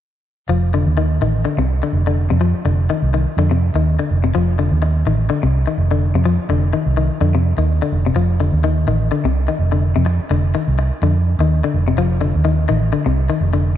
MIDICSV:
0, 0, Header, 1, 5, 480
1, 0, Start_track
1, 0, Tempo, 478088
1, 500, Time_signature, 4, 2, 24, 8
1, 13828, End_track
2, 0, Start_track
2, 0, Title_t, "Clean electric guitar"
2, 0, Program_c, 0, 27
2, 496, Note_on_c, 0, 53, 71
2, 699, Note_off_c, 0, 53, 0
2, 743, Note_on_c, 0, 50, 66
2, 943, Note_off_c, 0, 50, 0
2, 978, Note_on_c, 0, 51, 63
2, 1181, Note_off_c, 0, 51, 0
2, 1223, Note_on_c, 0, 51, 61
2, 1424, Note_off_c, 0, 51, 0
2, 1456, Note_on_c, 0, 50, 65
2, 1571, Note_off_c, 0, 50, 0
2, 1591, Note_on_c, 0, 48, 59
2, 1795, Note_off_c, 0, 48, 0
2, 1838, Note_on_c, 0, 50, 57
2, 2039, Note_off_c, 0, 50, 0
2, 2079, Note_on_c, 0, 50, 60
2, 2280, Note_off_c, 0, 50, 0
2, 2312, Note_on_c, 0, 48, 64
2, 2405, Note_off_c, 0, 48, 0
2, 2418, Note_on_c, 0, 53, 68
2, 2623, Note_off_c, 0, 53, 0
2, 2666, Note_on_c, 0, 50, 61
2, 2868, Note_off_c, 0, 50, 0
2, 2911, Note_on_c, 0, 51, 68
2, 3111, Note_off_c, 0, 51, 0
2, 3152, Note_on_c, 0, 51, 65
2, 3352, Note_off_c, 0, 51, 0
2, 3400, Note_on_c, 0, 50, 73
2, 3507, Note_off_c, 0, 50, 0
2, 3526, Note_on_c, 0, 48, 59
2, 3726, Note_off_c, 0, 48, 0
2, 3771, Note_on_c, 0, 51, 59
2, 3969, Note_off_c, 0, 51, 0
2, 4009, Note_on_c, 0, 50, 64
2, 4208, Note_off_c, 0, 50, 0
2, 4255, Note_on_c, 0, 48, 65
2, 4340, Note_off_c, 0, 48, 0
2, 4365, Note_on_c, 0, 53, 75
2, 4561, Note_off_c, 0, 53, 0
2, 4608, Note_on_c, 0, 50, 66
2, 4802, Note_off_c, 0, 50, 0
2, 5088, Note_on_c, 0, 51, 65
2, 5283, Note_off_c, 0, 51, 0
2, 5318, Note_on_c, 0, 50, 75
2, 5428, Note_off_c, 0, 50, 0
2, 5453, Note_on_c, 0, 48, 61
2, 5651, Note_off_c, 0, 48, 0
2, 5697, Note_on_c, 0, 51, 58
2, 5894, Note_off_c, 0, 51, 0
2, 5936, Note_on_c, 0, 50, 65
2, 6133, Note_off_c, 0, 50, 0
2, 6178, Note_on_c, 0, 48, 63
2, 6263, Note_off_c, 0, 48, 0
2, 6280, Note_on_c, 0, 53, 76
2, 6478, Note_off_c, 0, 53, 0
2, 6523, Note_on_c, 0, 50, 66
2, 6720, Note_off_c, 0, 50, 0
2, 6760, Note_on_c, 0, 51, 73
2, 6959, Note_off_c, 0, 51, 0
2, 6999, Note_on_c, 0, 51, 65
2, 7198, Note_off_c, 0, 51, 0
2, 7240, Note_on_c, 0, 50, 70
2, 7349, Note_off_c, 0, 50, 0
2, 7376, Note_on_c, 0, 48, 61
2, 7573, Note_off_c, 0, 48, 0
2, 7612, Note_on_c, 0, 51, 58
2, 7811, Note_off_c, 0, 51, 0
2, 7853, Note_on_c, 0, 50, 62
2, 8051, Note_off_c, 0, 50, 0
2, 8097, Note_on_c, 0, 48, 65
2, 8182, Note_off_c, 0, 48, 0
2, 8192, Note_on_c, 0, 53, 70
2, 8393, Note_off_c, 0, 53, 0
2, 8437, Note_on_c, 0, 50, 64
2, 8637, Note_off_c, 0, 50, 0
2, 8674, Note_on_c, 0, 51, 69
2, 8874, Note_off_c, 0, 51, 0
2, 8913, Note_on_c, 0, 51, 63
2, 9114, Note_off_c, 0, 51, 0
2, 9152, Note_on_c, 0, 50, 71
2, 9264, Note_off_c, 0, 50, 0
2, 9289, Note_on_c, 0, 48, 64
2, 9488, Note_off_c, 0, 48, 0
2, 9521, Note_on_c, 0, 51, 62
2, 9723, Note_off_c, 0, 51, 0
2, 9758, Note_on_c, 0, 50, 64
2, 9962, Note_off_c, 0, 50, 0
2, 9997, Note_on_c, 0, 48, 65
2, 10090, Note_off_c, 0, 48, 0
2, 10350, Note_on_c, 0, 50, 67
2, 10551, Note_off_c, 0, 50, 0
2, 10589, Note_on_c, 0, 51, 66
2, 10790, Note_off_c, 0, 51, 0
2, 11074, Note_on_c, 0, 50, 71
2, 11183, Note_off_c, 0, 50, 0
2, 11450, Note_on_c, 0, 51, 66
2, 11647, Note_off_c, 0, 51, 0
2, 11688, Note_on_c, 0, 50, 70
2, 11885, Note_off_c, 0, 50, 0
2, 11924, Note_on_c, 0, 48, 65
2, 12012, Note_off_c, 0, 48, 0
2, 12029, Note_on_c, 0, 53, 84
2, 12228, Note_off_c, 0, 53, 0
2, 12261, Note_on_c, 0, 50, 67
2, 12463, Note_off_c, 0, 50, 0
2, 12497, Note_on_c, 0, 51, 76
2, 12700, Note_off_c, 0, 51, 0
2, 12738, Note_on_c, 0, 51, 67
2, 12941, Note_off_c, 0, 51, 0
2, 12978, Note_on_c, 0, 50, 74
2, 13091, Note_off_c, 0, 50, 0
2, 13112, Note_on_c, 0, 48, 66
2, 13313, Note_off_c, 0, 48, 0
2, 13349, Note_on_c, 0, 51, 66
2, 13551, Note_off_c, 0, 51, 0
2, 13589, Note_on_c, 0, 50, 67
2, 13790, Note_off_c, 0, 50, 0
2, 13828, End_track
3, 0, Start_track
3, 0, Title_t, "Fingered electric bass"
3, 0, Program_c, 1, 33
3, 489, Note_on_c, 1, 29, 72
3, 834, Note_off_c, 1, 29, 0
3, 868, Note_on_c, 1, 39, 68
3, 1188, Note_off_c, 1, 39, 0
3, 1212, Note_on_c, 1, 33, 63
3, 1436, Note_off_c, 1, 33, 0
3, 1581, Note_on_c, 1, 36, 77
3, 1807, Note_off_c, 1, 36, 0
3, 1932, Note_on_c, 1, 29, 72
3, 2279, Note_off_c, 1, 29, 0
3, 2317, Note_on_c, 1, 41, 61
3, 2537, Note_off_c, 1, 41, 0
3, 2660, Note_on_c, 1, 29, 78
3, 2882, Note_off_c, 1, 29, 0
3, 3035, Note_on_c, 1, 36, 71
3, 3257, Note_off_c, 1, 36, 0
3, 3382, Note_on_c, 1, 41, 75
3, 3726, Note_off_c, 1, 41, 0
3, 3758, Note_on_c, 1, 39, 69
3, 3980, Note_off_c, 1, 39, 0
3, 4124, Note_on_c, 1, 29, 82
3, 4337, Note_off_c, 1, 29, 0
3, 4369, Note_on_c, 1, 29, 73
3, 4701, Note_off_c, 1, 29, 0
3, 4734, Note_on_c, 1, 39, 72
3, 5046, Note_off_c, 1, 39, 0
3, 5081, Note_on_c, 1, 33, 63
3, 5296, Note_off_c, 1, 33, 0
3, 5453, Note_on_c, 1, 36, 79
3, 5669, Note_off_c, 1, 36, 0
3, 5798, Note_on_c, 1, 29, 79
3, 6136, Note_off_c, 1, 29, 0
3, 6167, Note_on_c, 1, 41, 60
3, 6386, Note_off_c, 1, 41, 0
3, 6514, Note_on_c, 1, 29, 78
3, 6733, Note_off_c, 1, 29, 0
3, 6889, Note_on_c, 1, 36, 66
3, 7107, Note_off_c, 1, 36, 0
3, 7237, Note_on_c, 1, 41, 85
3, 7575, Note_off_c, 1, 41, 0
3, 7603, Note_on_c, 1, 39, 70
3, 7824, Note_off_c, 1, 39, 0
3, 7952, Note_on_c, 1, 29, 82
3, 8171, Note_off_c, 1, 29, 0
3, 8183, Note_on_c, 1, 29, 79
3, 8527, Note_off_c, 1, 29, 0
3, 8557, Note_on_c, 1, 39, 69
3, 8877, Note_off_c, 1, 39, 0
3, 8901, Note_on_c, 1, 33, 75
3, 9125, Note_off_c, 1, 33, 0
3, 9279, Note_on_c, 1, 36, 81
3, 9500, Note_off_c, 1, 36, 0
3, 9627, Note_on_c, 1, 29, 83
3, 9968, Note_off_c, 1, 29, 0
3, 10005, Note_on_c, 1, 41, 67
3, 10223, Note_off_c, 1, 41, 0
3, 10344, Note_on_c, 1, 29, 80
3, 10565, Note_off_c, 1, 29, 0
3, 10718, Note_on_c, 1, 36, 69
3, 10938, Note_off_c, 1, 36, 0
3, 11063, Note_on_c, 1, 41, 86
3, 11404, Note_off_c, 1, 41, 0
3, 11433, Note_on_c, 1, 39, 75
3, 11655, Note_off_c, 1, 39, 0
3, 11786, Note_on_c, 1, 29, 81
3, 12004, Note_off_c, 1, 29, 0
3, 12020, Note_on_c, 1, 29, 72
3, 12361, Note_off_c, 1, 29, 0
3, 12397, Note_on_c, 1, 39, 73
3, 12712, Note_off_c, 1, 39, 0
3, 12743, Note_on_c, 1, 33, 74
3, 12961, Note_off_c, 1, 33, 0
3, 13112, Note_on_c, 1, 36, 85
3, 13331, Note_off_c, 1, 36, 0
3, 13458, Note_on_c, 1, 29, 85
3, 13797, Note_off_c, 1, 29, 0
3, 13828, End_track
4, 0, Start_track
4, 0, Title_t, "Muted clean electric guitar strokes"
4, 4844, Note_on_c, 9, 29, 68
4, 4944, Note_off_c, 9, 29, 0
4, 10102, Note_on_c, 9, 29, 75
4, 10202, Note_off_c, 9, 29, 0
4, 10830, Note_on_c, 9, 29, 67
4, 10930, Note_off_c, 9, 29, 0
4, 13828, End_track
5, 0, Start_track
5, 0, Title_t, "Muted fingered electric bass strokes"
5, 2554, Note_on_c, 9, 29, 33
5, 2655, Note_off_c, 9, 29, 0
5, 6410, Note_on_c, 9, 29, 34
5, 6511, Note_off_c, 9, 29, 0
5, 10241, Note_on_c, 9, 29, 32
5, 10342, Note_off_c, 9, 29, 0
5, 13828, End_track
0, 0, End_of_file